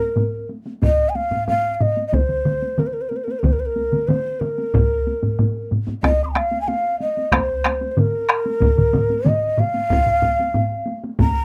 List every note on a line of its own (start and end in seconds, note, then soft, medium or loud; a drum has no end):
0.00 0.50 A#4 loud
0.00 taiko high soft
0.17 taiko low-mid medium
0.17 taiko high medium
0.49 taiko high soft
0.66 taiko high soft
0.82 1.11 D#5 medium
0.82 taiko medium
0.82 taiko low-mid medium
0.82 taiko high medium
1.09 1.18 G#5 medium
1.15 1.48 F5 medium
1.15 taiko high soft
1.31 taiko low-mid medium
1.31 taiko high soft
1.48 1.74 F5 medium
1.48 taiko low-mid medium
1.48 taiko high medium
1.74 1.83 F5 medium
1.81 2.07 D#5 medium
1.81 taiko low-mid medium
1.81 taiko high soft
1.97 taiko high soft
2.08 2.16 D#5 medium
2.12 2.81 C5 medium
2.12 taiko medium
2.12 taiko mid medium
2.12 taiko high medium
2.29 taiko mid medium
2.45 taiko mid medium
2.45 taiko high soft
2.62 taiko high soft
2.78 2.88 A#4 medium
2.78 taiko mid medium
2.78 taiko high medium
2.87 2.95 C5 medium
2.94 3.03 A#4 medium
3.01 3.11 C5 medium
3.09 3.18 A#4 medium
3.09 taiko high soft
3.16 3.25 C5 medium
3.24 3.33 A#4 medium
3.24 taiko high medium
3.31 3.41 C5 medium
3.39 3.47 A#4 medium
3.39 taiko mid medium
3.44 3.54 C5 medium
3.44 taiko medium
3.44 taiko high medium
3.53 3.61 A#4 medium
3.60 3.67 C5 medium
3.66 4.09 A#4 medium
3.76 taiko high soft
3.92 taiko mid medium
3.92 taiko high medium
4.08 4.41 C5 medium
4.08 taiko mid medium
4.08 taiko high medium
4.40 5.71 A#4 medium
4.40 taiko mid medium
4.40 taiko high soft
4.58 taiko high soft
4.74 taiko medium
4.74 taiko low-mid medium
4.74 taiko high medium
5.07 taiko high soft
5.23 taiko low-mid medium
5.23 taiko high medium
5.39 taiko low-mid medium
5.39 taiko high medium
5.71 taiko low-mid medium
5.71 taiko high medium
5.87 taiko low-mid medium
5.87 taiko high medium
6.03 6.23 D#5 medium
6.03 taiko rim medium
6.03 taiko medium
6.03 taiko high medium
6.24 6.28 C6 soft
6.24 6.26 D#6 soft
6.29 6.37 G#5 soft
6.29 6.32 A#5 soft
6.35 6.61 F5 medium
6.35 taiko rim medium
6.35 taiko high soft
6.52 taiko high medium
6.61 6.70 G#5 medium
6.68 7.00 F5 medium
6.68 taiko high medium
7.00 7.34 D#5 medium
7.00 taiko high soft
7.17 taiko high medium
7.32 7.91 C5 medium
7.32 taiko rim medium
7.32 taiko medium
7.32 taiko high medium
7.64 taiko rim medium
7.64 taiko high medium
7.81 taiko high medium
7.91 8.00 C5 medium
7.97 9.30 A#4 medium
7.97 taiko low-mid medium
7.97 taiko mid medium
7.97 taiko high medium
8.29 taiko rim medium
8.46 taiko high medium
8.61 taiko medium
8.61 taiko low-mid medium
8.61 taiko mid medium
8.61 taiko high medium
8.78 taiko low-mid medium
8.78 taiko mid medium
8.93 taiko low-mid medium
8.93 taiko mid loud
8.93 taiko high soft
9.10 taiko high medium
9.25 9.61 D#5 medium
9.25 taiko low-mid medium
9.25 taiko mid medium
9.25 taiko high medium
9.58 10.95 F5 loud
9.58 taiko low-mid medium
9.58 taiko mid medium
9.58 taiko high soft
9.74 taiko high medium
9.90 taiko loud
9.90 taiko low-mid medium
9.90 taiko high medium
10.06 taiko low-mid medium
10.22 taiko low-mid medium
10.22 taiko high medium
10.39 taiko high medium
10.54 taiko low-mid medium
10.54 taiko high medium
10.87 taiko high medium
11.04 taiko high medium
11.19 11.45 A#5 loud
11.19 taiko medium
11.19 taiko low-mid medium
11.19 taiko high medium